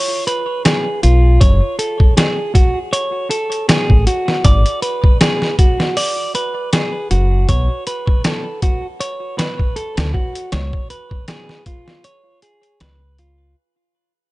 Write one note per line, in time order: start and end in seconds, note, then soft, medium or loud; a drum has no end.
0.00 0.24 C#5 loud
0.27 0.62 B4 loud
0.27 closed hi-hat medium
0.65 1.00 G#4 medium
0.65 snare loud
0.65 closed hi-hat medium
1.03 1.37 B1 medium
1.03 1.39 F4 medium
1.03 closed hi-hat medium
1.41 1.60 F#1 loud
1.41 1.75 C#5 medium
1.41 kick loud
1.41 closed hi-hat medium
1.79 2.13 A4 medium
1.79 closed hi-hat medium
2.00 kick medium
2.17 2.53 G#4 medium
2.17 snare loud
2.17 closed hi-hat medium
2.55 2.78 F#4 medium
2.55 kick loud
2.55 closed hi-hat medium
2.93 3.27 C#5 loud
2.93 closed hi-hat medium
3.30 3.67 A4 medium
3.30 closed hi-hat medium
3.52 closed hi-hat soft
3.69 4.05 G#4 loud
3.69 snare loud
3.69 closed hi-hat medium
3.90 4.05 A1 medium
3.90 kick medium
4.07 4.43 F#4 medium
4.07 closed hi-hat medium
4.28 snare soft
4.45 4.63 G#1 loud
4.45 4.81 D5 loud
4.45 kick loud
4.45 closed hi-hat medium
4.66 closed hi-hat soft
4.82 5.17 B4 medium
4.82 closed hi-hat medium
5.04 kick medium
5.21 5.55 G#4 loud
5.21 snare loud
5.21 closed hi-hat medium
5.42 snare soft
5.59 5.95 F#4 medium
5.59 kick medium
5.59 closed hi-hat medium
5.80 snare medium
5.97 6.31 D5 loud
5.97 open hi-hat medium
6.35 6.69 B4 loud
6.35 closed hi-hat medium
6.73 7.08 G#4 medium
6.73 snare loud
6.73 closed hi-hat medium
7.11 7.45 F#1 medium
7.11 7.47 F#4 medium
7.11 closed hi-hat medium
7.49 7.67 B1 loud
7.49 7.83 C#5 medium
7.49 kick loud
7.49 closed hi-hat medium
7.87 8.21 B4 medium
7.87 closed hi-hat medium
8.07 kick loud
8.24 8.61 A4 medium
8.24 snare loud
8.24 closed hi-hat medium
8.62 8.86 F#4 medium
8.62 kick loud
8.62 closed hi-hat medium
9.00 9.35 C#5 loud
9.00 closed hi-hat medium
9.38 9.75 B4 loud
9.38 snare loud
9.38 closed hi-hat medium
9.60 kick medium
9.76 10.13 A4 loud
9.76 closed hi-hat medium
9.97 10.13 D2 medium
9.97 snare loud
9.97 closed hi-hat medium
10.14 10.50 F#4 medium
10.14 kick medium
10.35 closed hi-hat medium
10.52 10.71 C#2 loud
10.52 10.89 C#5 loud
10.52 snare medium
10.52 closed hi-hat medium
10.73 kick medium
10.90 11.25 B4 medium
10.90 closed hi-hat medium
11.11 kick medium
11.28 11.63 G#4 loud
11.28 snare loud
11.28 closed hi-hat medium
11.49 snare soft
11.66 12.03 F4 medium
11.66 kick loud
11.66 closed hi-hat medium
11.88 snare medium
12.04 12.39 C#5 loud
12.04 closed hi-hat medium
12.42 12.79 G#4 medium
12.42 closed hi-hat medium
12.63 closed hi-hat soft
12.80 13.53 C#2 medium
12.80 13.17 B4 loud
12.80 snare loud
12.80 closed hi-hat medium
13.18 13.55 F4 loud
13.18 closed hi-hat medium